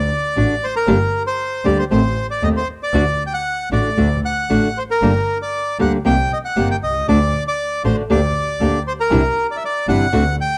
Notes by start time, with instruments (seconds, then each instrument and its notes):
Already playing: bandoneon D5
0.36 double bass A1, nylon-string guitar D3 A3 D4 F#4
0.64 bandoneon C5
0.76 bandoneon A#4
0.87 double bass G1, nylon-string guitar D3 G3 A#3 D4 G4
1.27 bandoneon C5
1.64 double bass D2, nylon-string guitar D3 G3 A#3 D4 G4, bandoneon D5
1.79 bandoneon C5
1.90 double bass A1, nylon-string guitar D#3 A3 C4, bandoneon C5
2.31 bandoneon D5
2.42 double bass D#2, nylon-string guitar D#3 A3 C4, bandoneon D#5
2.57 bandoneon C5
2.83 bandoneon D5
2.93 double bass D2, nylon-string guitar D3 A3 D4 F#4
3.27 bandoneon G5
3.34 bandoneon F#5
3.71 double bass A1, nylon-string guitar D3 A3 D4 F#4, bandoneon D5
3.97 double bass D2, nylon-string guitar D3 A3 D4 F#4
4.25 bandoneon F#5
4.50 double bass A1, nylon-string guitar D3 A3 D4 F#4
4.78 bandoneon C5
4.91 bandoneon A#4
5.01 double bass G1, nylon-string guitar D3 G3 A#3 D4 G4
5.42 bandoneon D5
5.79 double bass D2, nylon-string guitar D3 G3 A#3 D4 G4, bandoneon F#5
6.05 double bass C2, nylon-string guitar C3 D#3 A#3 C4 G4, bandoneon G5
6.33 bandoneon D#5
6.45 bandoneon F#5
6.56 double bass G1, nylon-string guitar C3 D#3 A#3 C4 G4
6.71 bandoneon G5
6.83 double bass C2, bandoneon D#5
7.08 double bass D2, nylon-string guitar D3 A3 D4 F#4, bandoneon D5
7.48 bandoneon D5
7.84 double bass A1, nylon-string guitar D3 A3 D4 F#4, bandoneon C5
8.09 double bass D2, nylon-string guitar D3 A#3 D4 G4, bandoneon D5
8.60 double bass D2, nylon-string guitar D3 A#3 D4 G4
8.87 bandoneon C5
9.00 bandoneon A#4
9.11 double bass C2, nylon-string guitar C3 E3 G3 D4 E4
9.51 bandoneon D5
9.56 bandoneon E5
9.65 bandoneon D5
9.87 double bass G1, nylon-string guitar C3 E3 G3 D4 E4, bandoneon F#5
10.13 double bass D2, nylon-string guitar D3 A3 C4 F#4
10.41 bandoneon G5